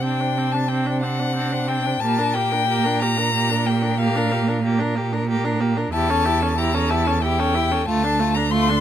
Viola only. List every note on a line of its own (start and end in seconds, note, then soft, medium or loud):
0.03 0.22 C4 medium
0.21 0.39 D4 medium
0.38 0.56 C4 medium
0.54 0.70 D4 medium
0.71 0.88 C4 medium
0.86 1.05 D4 medium
1.03 1.21 C4 medium
1.19 1.35 D4 medium
1.36 1.53 C4 medium
1.52 1.70 D4 medium
1.68 1.88 C4 medium
1.86 2.01 D4 medium
2.02 2.20 A#3 medium
2.19 2.38 D4 medium
2.37 2.54 A#3 medium
2.52 2.68 D4 medium
2.68 2.87 A#3 medium
2.86 3.04 D4 medium
3.02 3.20 A#3 medium
3.18 3.33 D4 medium
3.34 3.51 A#3 medium
3.50 3.68 D4 medium
3.66 3.84 A#3 medium
3.82 3.99 D4 medium
3.99 4.17 A#3 medium
4.16 4.33 D4 medium
4.32 4.50 A#3 medium
4.48 4.63 D4 medium
4.64 4.81 A#3 medium
4.79 4.97 D4 medium
4.96 5.14 A#3 medium
5.12 5.27 D4 medium
5.28 5.46 A#3 medium
5.44 5.62 D4 medium
5.60 5.79 A#3 medium
5.77 5.93 D4 medium
5.93 6.12 E4 medium
6.10 6.27 C#4 medium
6.25 6.44 E4 medium
6.43 6.57 C#4 medium
6.58 6.76 E4 medium
6.74 6.92 C#4 medium
6.91 7.09 E4 medium
7.07 7.22 C#4 medium
7.23 7.41 E4 medium
7.40 7.57 C#4 medium
7.55 7.73 E4 medium
7.72 7.87 C#4 medium
7.88 8.06 A3 medium
8.04 8.21 D4 medium
8.20 8.38 A3 medium
8.36 8.52 D4 medium
8.53 8.71 A3 medium
8.70 8.80 D4 medium